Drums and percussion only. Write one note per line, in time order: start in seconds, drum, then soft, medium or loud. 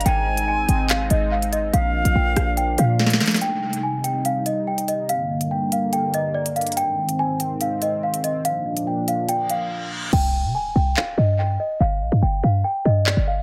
0.01 closed hi-hat medium
0.06 closed hi-hat medium
0.37 closed hi-hat medium
0.69 closed hi-hat medium
0.89 clap loud
0.89 closed hi-hat medium
1.10 closed hi-hat medium
1.42 closed hi-hat medium
1.53 closed hi-hat medium
1.74 closed hi-hat medium
2.05 closed hi-hat medium
2.36 cross-stick loud
2.36 closed hi-hat medium
2.57 closed hi-hat medium
2.78 closed hi-hat medium
2.99 snare medium
3.06 snare medium
3.06 closed hi-hat medium
3.13 snare medium
3.20 snare medium
3.20 closed hi-hat soft
3.20 open hi-hat medium
3.26 snare loud
3.26 closed hi-hat medium
3.31 snare loud
3.31 closed hi-hat medium
3.36 closed hi-hat medium
3.41 closed hi-hat medium
3.73 closed hi-hat medium
4.04 closed hi-hat medium
4.25 closed hi-hat medium
4.46 closed hi-hat medium
4.78 closed hi-hat medium
4.88 closed hi-hat medium
5.09 closed hi-hat medium
5.41 closed hi-hat medium
5.72 closed hi-hat medium
5.93 closed hi-hat medium
6.14 closed hi-hat medium
6.46 closed hi-hat medium
6.56 closed hi-hat soft
6.61 closed hi-hat medium
6.67 closed hi-hat medium
6.72 closed hi-hat medium
6.77 closed hi-hat medium
7.09 closed hi-hat medium
7.40 closed hi-hat medium
7.61 closed hi-hat medium
7.82 closed hi-hat medium
8.14 closed hi-hat medium
8.24 closed hi-hat medium
8.45 closed hi-hat medium
8.77 closed hi-hat medium
9.08 closed hi-hat medium
9.29 closed hi-hat medium
9.50 closed hi-hat medium
10.13 crash loud
10.97 clap loud
13.06 clap loud